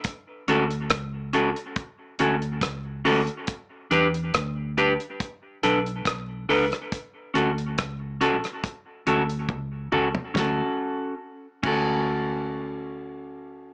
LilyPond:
<<
  \new Staff \with { instrumentName = "Clean electric guitar" } { \time 4/4 \key d \major \tempo 4 = 70 r8 <cis' fis' a'>8 r8 <cis' fis' a'>8 r8 <cis' fis' a'>8 r8 <cis' fis' a'>8 | r8 <d' g' b'>8 r8 <d' g' b'>8 r8 <d' a' b'>8 r8 <d' a' b'>8 | r8 <cis' fis' a'>8 r8 <cis' fis' a'>8 r8 <cis' fis' a'>8 r8 <cis' fis' a'>8 | <cis' fis' a'>8 r4 <cis' fis' a'>2~ <cis' fis' a'>8 | }
  \new Staff \with { instrumentName = "Fingered electric bass" } { \clef bass \time 4/4 \key d \major r8 d,8 cis,8. r8. d,8 cis,8 d,16 r16 | r8 e,8 d,8. r8. b,,8 b,,8 cis,16 r16 | r8 d,8 cis,8. r8. d,8 cis,8 cis,16 r16 | d,8 r4 d,2~ d,8 | }
  \new DrumStaff \with { instrumentName = "Drums" } \drummode { \time 4/4 <hh bd>8 hh16 hh16 <hh bd ss>8 hh16 hh16 <hh bd>8 hh16 hh16 <hh bd ss>8 hho16 hh16 | <hh bd>8 hh16 hh16 <hh bd ss>8 hh16 hh16 <hh bd>8 hh16 hh16 <hh bd ss>8 hho16 <hh ss>16 | <hh bd>8 hh16 hh16 <hh bd ss>8 hh16 <hh ss>16 <hh bd>8 hh16 hh16 <bd tommh>8 toml16 tomfh16 | <bd sn>4 r8 <cymc bd>8 r4 r4 | }
>>